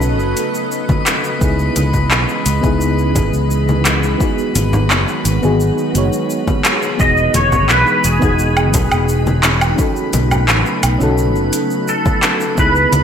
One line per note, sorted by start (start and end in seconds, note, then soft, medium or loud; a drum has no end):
0.00 0.19 B1 medium
0.00 4.16 C#3 medium
0.00 1.39 F#3 medium
0.00 1.38 A3 medium
0.00 4.16 B3 medium
0.00 1.43 C#4 medium
0.00 1.41 D#4 medium
0.00 1.43 F#4 medium
0.00 1.43 A4 loud
0.00 6.98 B4 medium
0.00 4.16 D#5 medium
0.00 6.98 B5 medium
0.00 shaker soft
0.19 0.33 F#1 medium
0.19 shaker soft
0.37 closed hi-hat medium
0.37 shaker medium
0.55 shaker soft
0.72 shaker soft
0.89 kick medium
0.89 high conga medium
0.89 shaker soft
1.06 clap medium
1.06 closed hi-hat medium
1.06 shaker medium
1.24 shaker soft
1.39 1.68 C#2 medium
1.39 4.17 E3 medium
1.39 6.95 G#3 medium
1.39 2.58 B3 medium
1.39 2.59 D#4 medium
1.39 2.60 E4 medium
1.39 kick loud
1.39 shaker soft
1.44 2.61 G#4 medium
1.59 shaker soft
1.76 2.11 C#2 loud
1.76 closed hi-hat medium
1.76 high conga medium
1.76 shaker medium
1.93 kick soft
1.93 low conga medium
1.93 shaker soft
2.11 2.25 B1 medium
2.11 clap medium
2.11 shaker soft
2.29 shaker soft
2.46 2.60 C#2 medium
2.46 closed hi-hat medium
2.46 shaker medium
2.61 3.17 C#2 medium
2.61 4.15 B3 medium
2.61 4.16 D#4 medium
2.61 4.17 E4 medium
2.61 kick medium
2.61 high conga medium
2.61 shaker soft
2.66 4.17 G#4 medium
2.81 shaker soft
2.99 shaker soft
3.15 3.29 G#1 medium
3.15 kick medium
3.15 closed hi-hat medium
3.15 low conga medium
3.15 shaker medium
3.33 4.14 C#2 medium
3.33 shaker soft
3.51 shaker soft
3.69 high conga medium
3.69 shaker soft
3.85 clap medium
3.85 closed hi-hat medium
3.85 shaker medium
4.03 shaker soft
4.18 6.97 D#3 medium
4.18 6.97 F#3 medium
4.18 5.37 B3 medium
4.18 6.97 B3 medium
4.18 5.38 D#4 medium
4.18 6.97 F#4 medium
4.18 5.39 F#4 medium
4.18 kick loud
4.18 shaker soft
4.23 5.40 G#4 medium
4.38 shaker soft
4.55 4.90 G#1 medium
4.55 closed hi-hat medium
4.55 high conga medium
4.55 shaker medium
4.73 low conga medium
4.73 shaker soft
4.90 5.04 F#1 medium
4.90 clap medium
4.90 shaker soft
5.08 shaker soft
5.25 5.39 G#1 medium
5.25 closed hi-hat medium
5.25 shaker medium
5.42 5.70 G#1 medium
5.42 5.91 B3 medium
5.42 5.91 D#4 medium
5.42 5.92 F#4 medium
5.42 5.92 G#4 medium
5.42 high conga medium
5.42 shaker soft
5.60 shaker soft
5.78 shaker soft
5.93 6.08 F#1 medium
5.93 6.94 B3 medium
5.93 6.95 D#4 medium
5.93 6.96 F#4 medium
5.93 closed hi-hat medium
5.93 shaker medium
5.98 6.97 C#5 medium
6.13 shaker soft
6.30 shaker soft
6.48 kick medium
6.48 high conga medium
6.48 shaker soft
6.65 clap medium
6.65 closed hi-hat medium
6.65 shaker medium
6.82 shaker soft
6.97 7.26 E1 medium
6.97 9.76 B2 medium
6.97 9.76 E3 medium
6.97 9.76 G#3 medium
6.97 8.16 B3 medium
6.97 8.17 D#4 medium
6.97 12.54 D#4 medium
6.97 8.18 F#4 medium
6.97 9.76 G#4 medium
6.97 13.03 B4 medium
6.97 7.35 D#5 medium
6.97 13.03 B5 medium
6.97 kick loud
6.97 shaker soft
7.02 8.19 G#4 medium
7.17 shaker soft
7.34 7.69 E1 medium
7.34 7.71 C#5 medium
7.34 closed hi-hat medium
7.34 high conga medium
7.34 shaker medium
7.52 kick medium
7.52 low conga medium
7.52 shaker soft
7.69 7.83 B1 medium
7.69 8.06 B4 medium
7.69 clap medium
7.69 shaker soft
7.87 shaker soft
8.04 8.18 E1 medium
8.04 9.40 G#4 medium
8.04 closed hi-hat medium
8.04 shaker medium
8.20 8.74 E1 medium
8.20 9.73 B3 medium
8.20 9.74 D#4 medium
8.20 9.75 F#4 medium
8.20 kick loud
8.20 high conga medium
8.20 shaker soft
8.24 9.76 G#4 medium
8.39 shaker soft
8.57 low woodblock medium
8.57 shaker soft
8.74 8.88 B1 medium
8.74 kick loud
8.74 closed hi-hat medium
8.74 low conga medium
8.74 shaker medium
8.92 9.72 E1 medium
8.92 low woodblock medium
8.92 shaker soft
9.09 shaker soft
9.27 high conga medium
9.27 shaker soft
9.43 clap medium
9.43 closed hi-hat medium
9.43 shaker medium
9.61 low woodblock medium
9.61 shaker soft
9.76 13.03 C#3 medium
9.76 12.55 F#3 medium
9.76 12.55 A3 medium
9.76 12.55 B3 medium
9.76 10.95 C#4 medium
9.76 10.96 D#4 medium
9.76 10.97 F#4 medium
9.76 kick loud
9.76 shaker soft
9.81 10.98 A4 medium
9.96 shaker soft
10.13 10.48 B1 medium
10.13 closed hi-hat medium
10.13 high conga medium
10.13 shaker medium
10.31 low conga medium
10.31 low woodblock medium
10.31 shaker soft
10.48 10.62 A1 medium
10.48 clap medium
10.48 shaker soft
10.66 shaker soft
10.83 10.97 B1 medium
10.83 closed hi-hat medium
10.83 low woodblock medium
10.83 shaker medium
10.98 11.36 B1 medium
10.98 12.52 C#4 medium
10.98 12.53 D#4 medium
10.98 12.54 F#4 medium
10.98 high conga medium
10.98 shaker soft
11.03 12.55 A4 medium
11.18 shaker soft
11.36 11.49 F#1 medium
11.36 shaker soft
11.53 closed hi-hat medium
11.53 shaker medium
11.71 shaker soft
11.88 12.60 A4 medium
11.88 shaker soft
12.05 kick loud
12.05 high conga medium
12.05 shaker soft
12.23 clap medium
12.23 closed hi-hat medium
12.23 shaker medium
12.41 shaker soft
12.55 12.85 C#2 medium
12.55 13.03 E3 medium
12.55 13.03 G#3 medium
12.55 13.03 B3 medium
12.55 13.03 D#4 medium
12.55 13.03 E4 medium
12.55 13.03 D#5 medium
12.55 kick loud
12.55 shaker soft
12.59 13.03 G#4 medium
12.59 13.03 B4 medium
12.75 shaker soft
12.92 13.03 C#2 loud
12.92 closed hi-hat medium
12.92 high conga medium
12.92 shaker medium